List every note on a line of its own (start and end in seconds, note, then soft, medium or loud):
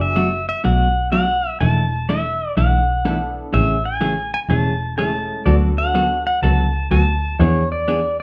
0.00 0.45 F#1 medium
0.00 0.13 B3 medium
0.00 0.13 D4 medium
0.00 0.13 F#4 medium
0.00 0.13 G#4 medium
0.00 0.48 E5 medium
0.16 0.28 B2 medium
0.16 0.28 F#3 medium
0.16 0.28 A3 medium
0.16 0.28 D4 medium
0.16 0.28 F#4 medium
0.49 0.63 E5 medium
0.64 1.42 B1 medium
0.64 0.87 B2 medium
0.64 0.87 F#3 medium
0.64 0.87 A3 medium
0.64 0.87 D4 medium
0.64 0.87 F#4 medium
0.64 1.11 F#5 medium
1.12 1.24 B2 medium
1.12 1.24 F#3 medium
1.12 1.25 A3 medium
1.12 1.25 D4 medium
1.12 1.25 F#4 medium
1.12 1.57 F#5 loud
1.61 2.38 E1 medium
1.61 1.83 E3 medium
1.61 1.83 A3 medium
1.61 1.84 D4 medium
1.61 1.84 E4 medium
1.61 1.84 A4 medium
1.61 2.10 A5 loud
2.09 2.21 E3 medium
2.09 2.21 A3 medium
2.09 2.21 D4 medium
2.09 2.21 E4 medium
2.09 2.21 A4 medium
2.09 2.57 E5 medium
2.57 3.34 B1 medium
2.57 2.80 E3 medium
2.57 2.80 A3 medium
2.57 2.80 D4 medium
2.57 2.80 E4 medium
2.57 2.80 A4 medium
2.57 3.33 F#5 medium
3.05 3.17 E3 medium
3.05 3.17 A3 medium
3.05 3.53 B3 medium
3.05 3.53 D4 medium
3.05 3.17 D4 medium
3.05 3.17 E4 medium
3.05 3.54 E4 soft
3.05 3.17 A4 medium
3.05 3.54 A4 medium
3.53 4.31 A1 medium
3.53 3.76 C#3 medium
3.53 3.76 E3 medium
3.53 3.76 A3 medium
3.53 3.76 C#4 medium
3.53 3.76 G#4 medium
3.53 3.87 E5 loud
3.85 4.33 G#5 loud
4.01 4.13 C#3 medium
4.01 4.13 E3 medium
4.01 4.13 A3 medium
4.01 4.13 C#4 medium
4.01 4.14 G#4 medium
4.34 4.39 G#5 medium
4.49 5.26 E1 medium
4.49 4.73 C#3 medium
4.49 4.72 E3 medium
4.49 4.73 A3 medium
4.49 4.73 C#4 medium
4.49 4.73 G#4 medium
4.49 4.97 A5 loud
4.97 5.10 C#3 medium
4.97 5.10 E3 medium
4.97 5.46 G#3 medium
4.97 5.46 A3 medium
4.97 5.10 A3 medium
4.97 5.46 C#4 medium
4.97 5.10 C#4 medium
4.97 5.46 E4 medium
4.97 5.10 G#4 medium
4.97 5.48 A5 loud
5.46 6.23 D2 medium
5.46 5.69 D3 medium
5.46 5.69 F#3 medium
5.46 5.69 B3 medium
5.46 6.20 B3 medium
5.46 6.20 D4 medium
5.46 5.69 F#4 medium
5.46 6.20 F#4 medium
5.46 5.69 A4 medium
5.46 6.20 A4 medium
5.46 5.54 D5 medium
5.78 6.23 F#5 medium
5.94 6.06 D3 medium
5.94 6.07 F#3 medium
5.94 6.07 B3 medium
5.94 6.07 F#4 medium
5.94 6.07 A4 medium
6.27 6.42 F#5 medium
6.42 6.83 C#2 medium
6.42 6.65 D3 medium
6.42 6.66 F#3 medium
6.42 6.66 B3 medium
6.42 6.66 F#4 medium
6.42 6.66 A4 medium
6.42 6.90 A5 loud
6.91 7.32 D2 medium
6.91 7.03 D3 medium
6.91 7.03 F#3 medium
6.91 7.03 B3 medium
6.91 7.03 F#4 medium
6.91 7.03 A4 medium
6.91 7.41 A5 loud
7.40 8.16 E2 loud
7.40 7.62 E3 medium
7.40 7.62 B3 medium
7.40 7.62 D4 medium
7.40 7.63 G#4 medium
7.40 7.71 C#5 medium
7.72 8.19 D5 medium
7.88 7.99 E3 medium
7.88 7.99 B3 medium
7.88 8.00 D4 medium
7.88 8.00 G#4 medium